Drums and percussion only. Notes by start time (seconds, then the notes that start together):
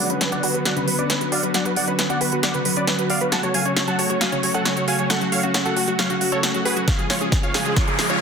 0.10 closed hi-hat
0.21 snare, closed hi-hat
0.32 closed hi-hat
0.43 open hi-hat
0.54 closed hi-hat
0.65 snare, closed hi-hat
0.77 closed hi-hat
0.88 open hi-hat
0.99 closed hi-hat
1.10 snare, closed hi-hat
1.21 closed hi-hat
1.32 open hi-hat
1.43 closed hi-hat
1.54 snare, closed hi-hat
1.65 closed hi-hat
1.76 open hi-hat
1.88 closed hi-hat
1.99 snare, closed hi-hat
2.10 closed hi-hat
2.21 open hi-hat
2.32 closed hi-hat
2.43 snare, closed hi-hat
2.54 closed hi-hat
2.65 open hi-hat
2.76 closed hi-hat
2.87 snare, closed hi-hat
2.99 closed hi-hat
3.10 open hi-hat
3.21 closed hi-hat
3.32 snare, closed hi-hat
3.43 closed hi-hat
3.54 open hi-hat
3.65 closed hi-hat
3.77 snare, closed hi-hat
3.88 closed hi-hat
3.99 open hi-hat
4.10 closed hi-hat
4.21 snare, closed hi-hat
4.32 closed hi-hat
4.43 open hi-hat
4.54 closed hi-hat
4.65 snare, closed hi-hat
4.77 closed hi-hat
4.88 open hi-hat
4.99 closed hi-hat
5.10 snare, closed hi-hat
5.21 closed hi-hat
5.32 open hi-hat
5.43 closed hi-hat
5.54 snare, closed hi-hat
5.65 closed hi-hat
5.77 open hi-hat
5.88 closed hi-hat
5.99 snare, closed hi-hat
6.10 closed hi-hat
6.21 open hi-hat
6.32 closed hi-hat
6.43 snare, closed hi-hat
6.54 closed hi-hat
6.65 open hi-hat
6.77 closed hi-hat
6.88 kick, snare, closed hi-hat
6.99 closed hi-hat
7.10 snare, open hi-hat
7.21 closed hi-hat
7.32 kick, snare, closed hi-hat
7.43 closed hi-hat
7.54 snare, open hi-hat
7.65 closed hi-hat
7.76 kick, snare, closed hi-hat
7.88 closed hi-hat, mid tom
7.99 snare, open hi-hat
8.10 closed hi-hat